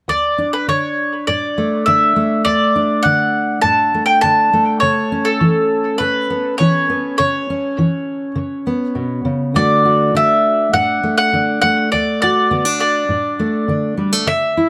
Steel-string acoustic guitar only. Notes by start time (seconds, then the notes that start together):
0.08 D2
0.38 D4
0.68 D3
1.28 A2
1.58 A3
1.87 D3 D4
2.16 A3
2.45 D2
2.76 D4
3.05 D3
3.63 A2
3.94 A3
4.23 D3 D4
4.53 A3
4.82 C#3
5.12 C#4
5.41 E3
6.00 C#3
6.30 B3
6.60 E3 C#4
6.90 B3
7.20 C#3
7.50 C#4
7.78 E3
8.35 C#3
8.67 B3
8.95 B2
9.25 C#3
9.54 D2 D3 A3 D4 F#4
9.85 F#4
10.14 D3 D4
10.73 A2
11.03 A3
11.33 D3 D4
11.63 A3
11.93 D2
12.23 F#4
12.51 D3 B3
12.65 D4
13.09 A2
13.39 A3
13.68 D3 D4
13.97 G3
14.12 A3
14.27 C#3
14.57 E4